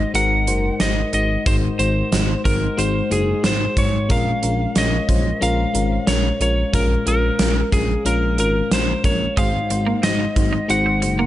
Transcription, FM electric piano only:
0.00 1.47 G#2 medium
0.00 0.14 G#3 medium
0.00 0.14 D#4 medium
0.00 0.15 F#4 medium
0.00 0.48 C5 medium
0.14 0.39 G#3 medium
0.14 0.39 D#4 medium
0.14 0.39 F#4 medium
0.14 0.40 A#4 loud
0.47 0.72 G#3 medium
0.47 0.72 D#4 medium
0.47 0.72 F#4 medium
0.47 0.72 C5 medium
0.80 1.05 G#3 medium
0.80 1.05 D#4 medium
0.80 1.05 F#4 medium
0.80 1.05 C5 medium
1.13 1.38 G#3 medium
1.13 1.38 D#4 medium
1.13 1.39 F#4 medium
1.13 1.39 D#5 medium
1.46 2.41 G#2 medium
1.46 1.71 G#3 medium
1.46 1.71 D#4 medium
1.46 1.72 F#4 medium
1.46 1.72 C5 medium
1.79 2.04 G#3 medium
1.79 2.04 D#4 medium
1.79 2.04 F#4 medium
1.79 2.04 C5 medium
2.12 2.37 G#3 medium
2.12 2.37 D#4 medium
2.12 2.37 F#4 medium
2.12 2.37 C5 medium
2.45 2.70 G#3 medium
2.45 2.70 D#4 medium
2.45 2.70 F#4 medium
2.45 2.70 C5 medium
2.77 3.03 G#3 medium
2.77 3.03 D#4 medium
2.77 3.03 F#4 medium
2.77 3.03 C5 loud
3.10 3.36 G#3 medium
3.10 3.36 D#4 medium
3.10 3.36 F#4 medium
3.10 3.36 G#4 medium
3.43 3.68 G#3 medium
3.43 3.69 D#4 medium
3.43 3.69 F#4 medium
3.43 3.69 C5 medium
3.76 4.02 G#3 medium
3.76 4.02 D#4 medium
3.76 4.02 F#4 medium
3.76 4.02 C5 medium
4.09 5.05 A#2 medium
4.09 4.34 G#3 medium
4.09 4.35 C#4 medium
4.09 4.35 F4 medium
4.09 4.35 A#4 loud
4.42 4.68 G#3 medium
4.42 4.68 C#4 medium
4.42 4.68 F4 medium
4.42 4.68 A#4 medium
4.76 5.01 G#3 medium
4.76 5.01 C#4 medium
4.76 5.01 F4 medium
4.76 5.01 C#5 medium
5.08 5.33 G#3 medium
5.08 5.34 C#4 medium
5.08 5.34 F4 medium
5.08 5.34 C5 medium
5.41 5.66 G#3 medium
5.41 5.66 C#4 medium
5.41 5.67 F4 medium
5.41 5.67 A#4 loud
5.73 5.99 G#3 medium
5.73 5.99 C#4 medium
5.73 6.00 F4 medium
5.73 6.00 A#4 medium
6.07 6.32 G#3 medium
6.07 6.32 C#4 medium
6.07 6.33 F4 medium
6.07 6.33 A#4 medium
6.40 6.65 G#3 medium
6.40 6.66 C#4 medium
6.40 6.66 F4 medium
6.40 6.66 A#4 medium
6.73 7.68 A#2 medium
6.73 6.98 G#3 medium
6.73 6.98 C#4 medium
6.73 6.99 F4 medium
6.73 6.99 A#4 loud
7.06 7.31 G#3 medium
7.06 7.31 C#4 medium
7.06 7.32 F4 medium
7.06 7.32 A#4 medium
7.39 7.64 G#3 medium
7.39 7.65 C#4 medium
7.39 7.65 F4 medium
7.39 7.65 A#4 medium
7.72 7.97 G#3 medium
7.72 7.97 C#4 medium
7.72 7.97 F4 medium
7.72 7.98 A#4 medium
8.05 8.30 G#3 medium
8.05 8.30 C#4 medium
8.05 8.31 F4 medium
8.05 8.31 A#4 loud
8.38 8.63 G#3 medium
8.38 8.63 C#4 medium
8.38 8.63 F4 medium
8.38 8.64 A#4 medium
8.71 8.96 G#3 medium
8.71 8.96 C#4 medium
8.71 8.96 F4 medium
8.71 8.97 A#4 medium
9.04 9.29 G#3 medium
9.04 9.29 C#4 medium
9.04 9.29 F4 medium
9.04 9.29 A#4 medium
9.37 10.33 G#2 medium
9.37 9.62 G#3 medium
9.37 9.62 D#4 medium
9.37 9.63 F#4 medium
9.37 9.63 C5 loud
9.70 9.95 G#3 medium
9.70 9.95 D#4 medium
9.70 9.96 F#4 medium
9.70 9.96 C5 medium
10.03 10.28 G#3 medium
10.03 10.28 D#4 medium
10.03 10.29 F#4 medium
10.03 10.29 C5 medium
10.36 10.61 G#3 medium
10.36 10.61 D#4 medium
10.36 10.61 F#4 medium
10.36 10.61 C5 medium
10.68 10.94 G#3 medium
10.68 10.94 D#4 medium
10.68 10.94 F#4 medium
10.68 10.94 C5 loud
11.02 11.26 G#3 medium
11.02 11.26 D#4 medium
11.02 11.26 F#4 medium
11.02 11.26 C5 medium

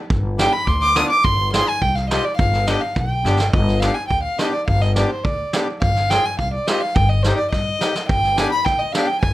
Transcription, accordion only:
0.38 0.53 B3 medium
0.38 0.53 D4 medium
0.38 0.53 G4 medium
0.95 1.10 B3 medium
0.95 1.10 D4 medium
0.95 1.11 F4 medium
1.52 1.67 C4 medium
1.52 1.67 F4 medium
1.52 1.68 G#4 medium
2.10 2.24 C4 medium
2.10 2.25 F4 medium
2.10 2.25 G4 medium
2.67 2.82 B3 medium
2.67 2.82 D4 medium
2.67 2.82 G4 medium
3.24 3.39 B3 medium
3.24 3.39 D4 medium
3.24 3.39 G4 medium
3.81 3.95 B3 medium
3.81 3.96 D4 soft
3.81 3.96 G4 medium
4.38 4.52 B3 medium
4.38 4.53 D4 medium
4.38 4.53 G4 medium
4.96 5.10 B3 medium
4.96 5.10 D4 medium
4.96 5.11 G4 medium
5.53 5.67 B3 medium
5.53 5.68 D4 medium
5.53 5.68 G4 medium
6.09 6.24 C4 medium
6.09 6.24 F4 medium
6.09 6.25 G#4 medium
6.67 6.81 C4 medium
6.67 6.82 F4 medium
6.67 6.82 G4 medium
7.25 7.38 C4 medium
7.25 7.39 D#4 medium
7.25 7.39 G4 medium
7.80 7.94 C4 medium
7.80 7.95 D#4 medium
7.80 7.95 G4 medium
8.36 8.51 B3 medium
8.36 8.51 D4 medium
8.36 8.51 G4 medium
8.93 9.08 B3 medium
8.93 9.08 D4 medium
8.93 9.09 G4 medium

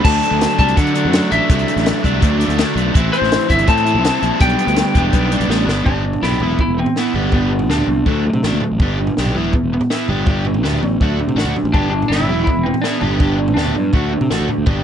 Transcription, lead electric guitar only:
0.05 0.58 A5 loud
0.59 0.76 A5 loud
0.76 1.33 F#5 medium
1.32 2.73 E5 medium
3.13 3.50 C5 loud
3.50 3.68 E5 loud
3.68 4.41 A5 loud
4.41 5.46 G5 loud
5.86 6.24 D4 medium
6.23 6.57 E4 medium
6.61 6.77 E4 medium
6.79 6.97 C4 medium
6.99 7.33 B3 medium
7.34 7.70 B3 medium
7.71 8.58 D4 medium
11.73 11.89 D4 medium
11.90 12.08 D4 medium
12.08 12.43 E4 medium
12.44 12.65 E4 medium
12.63 12.81 C4 medium
12.81 12.98 D4 medium
13.00 13.53 D4 medium
13.54 14.43 D4 medium

